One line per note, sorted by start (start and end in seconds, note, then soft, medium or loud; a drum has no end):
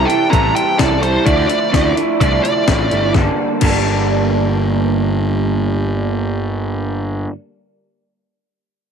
0.00 0.30 E3 medium
0.05 0.29 G3 soft
0.05 0.30 E4 medium
0.05 0.32 A4 medium
0.05 0.30 G5 medium
0.10 closed hi-hat soft
0.30 0.51 A1 medium
0.30 1.02 C3 medium
0.30 0.75 E3 medium
0.30 0.76 G3 medium
0.30 0.77 E4 medium
0.30 0.78 A4 medium
0.30 0.54 A#5 medium
0.30 kick medium
0.30 closed hi-hat medium
0.55 0.78 G5 medium
0.55 closed hi-hat medium
0.76 1.17 C2 medium
0.76 1.24 E3 medium
0.76 1.02 G3 medium
0.76 1.00 E4 medium
0.76 1.01 A4 medium
0.76 1.02 D5 medium
0.76 kick medium
0.76 snare medium
0.76 closed hi-hat medium
1.01 1.25 G3 medium
1.01 1.24 E4 medium
1.01 1.26 A4 medium
1.01 1.26 C5 medium
1.01 closed hi-hat medium
1.25 1.45 D2 medium
1.25 1.73 D3 medium
1.25 1.70 F3 medium
1.25 1.48 A3 medium
1.25 1.47 D4 medium
1.25 1.46 E4 medium
1.25 1.47 D5 medium
1.25 kick medium
1.25 closed hi-hat medium
1.47 1.70 A3 soft
1.47 1.71 D4 soft
1.47 1.72 E4 medium
1.47 1.95 D5 medium
1.47 closed hi-hat medium
1.71 1.92 D2 medium
1.71 2.18 F3 medium
1.71 1.96 A3 medium
1.71 1.95 D4 medium
1.71 1.94 E4 medium
1.71 kick medium
1.71 snare medium
1.71 closed hi-hat medium
1.95 2.19 A3 soft
1.95 2.20 D4 medium
1.95 2.20 E4 medium
1.95 closed hi-hat medium
2.20 2.39 C2 medium
2.20 2.91 D3 medium
2.20 2.65 F3 medium
2.20 2.67 A3 medium
2.20 2.67 D4 medium
2.20 2.67 E4 medium
2.20 2.42 D5 medium
2.20 kick medium
2.20 closed hi-hat medium
2.44 3.12 D5 medium
2.44 closed hi-hat soft
2.67 2.89 A1 medium
2.67 3.13 F3 medium
2.67 2.91 A3 medium
2.67 2.91 D4 medium
2.67 2.89 E4 medium
2.67 kick medium
2.67 snare medium
2.67 closed hi-hat medium
2.90 3.12 G1 medium
2.90 3.14 A3 soft
2.90 3.14 D4 soft
2.90 3.13 E4 medium
2.90 closed hi-hat soft
3.14 3.28 G1 medium
3.14 3.60 G2 medium
3.14 3.61 D3 medium
3.14 3.62 G3 medium
3.14 3.62 A#3 medium
3.14 3.64 D4 medium
3.14 3.63 A4 medium
3.14 kick medium
3.14 snare medium
3.60 7.25 G1 medium
3.60 7.28 G2 medium
3.60 7.29 D3 medium
3.60 7.30 G3 medium
3.60 7.31 A#3 medium
3.60 7.32 D4 medium
3.60 kick medium
3.60 crash medium
3.65 7.32 A4 medium